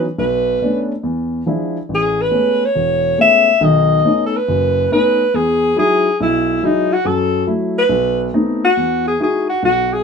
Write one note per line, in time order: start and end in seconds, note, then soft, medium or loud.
0.18 0.55 B1 medium
0.18 0.86 B4 medium
0.62 0.91 A3 medium
0.62 0.91 B3 medium
0.62 0.91 C#4 medium
0.62 0.91 D4 medium
1.03 1.40 E2 medium
1.46 1.76 F3 medium
1.46 1.76 G#3 medium
1.46 1.76 D4 soft
1.46 1.76 E4 medium
1.89 2.26 A1 medium
1.95 2.23 G#4 medium
2.22 2.67 B4 medium
2.31 2.61 G#3 medium
2.31 2.61 A3 medium
2.31 2.61 B3 medium
2.31 2.62 C#4 medium
2.66 3.20 C#5 medium
2.75 3.12 E1 medium
3.18 3.48 G#3 medium
3.18 3.48 A3 soft
3.18 3.48 B3 soft
3.18 3.48 C#4 medium
3.18 3.66 E5 loud
3.61 3.98 B1 medium
3.61 3.98 D#3 medium
3.61 4.24 D#5 loud
4.05 4.34 A3 medium
4.05 4.34 B3 soft
4.05 4.34 C#4 medium
4.05 4.35 D#4 medium
4.26 4.38 A4 medium
4.37 4.92 B4 medium
4.48 4.85 F#1 medium
4.48 4.85 F#2 medium
4.91 5.20 A3 medium
4.91 5.21 B3 medium
4.91 5.21 C#4 medium
4.91 5.21 D#4 medium
4.91 5.37 B4 loud
5.34 5.71 E2 medium
5.34 5.77 G#4 loud
5.76 6.06 F#3 medium
5.76 6.06 G#3 medium
5.76 6.06 D#4 medium
5.76 6.06 E4 medium
5.76 6.17 G#4 medium
6.21 6.57 B1 medium
6.21 6.66 E4 medium
6.63 6.92 F#3 medium
6.63 6.92 G#3 medium
6.63 6.92 D#4 soft
6.63 6.94 D#4 medium
6.63 6.92 E4 medium
6.93 7.08 F#4 medium
7.05 7.42 F#2 medium
7.05 7.42 F#3 medium
7.05 7.48 A4 medium
7.47 7.77 F#3 medium
7.47 7.77 A3 medium
7.47 7.77 E4 medium
7.78 8.30 B4 medium
7.89 8.27 B1 medium
8.33 8.63 A3 medium
8.33 8.64 B3 medium
8.33 8.64 C4 medium
8.33 8.64 D#4 medium
8.64 9.03 F#4 medium
8.77 9.14 E2 medium
9.08 9.20 G#4 medium
9.20 9.49 G#3 medium
9.20 9.50 D#4 medium
9.20 9.50 E4 soft
9.20 9.50 F#4 medium
9.20 9.48 G#4 medium
9.49 9.62 F#4 medium
9.63 10.00 B1 medium
9.63 9.94 F#4 medium
9.93 10.03 G#4 medium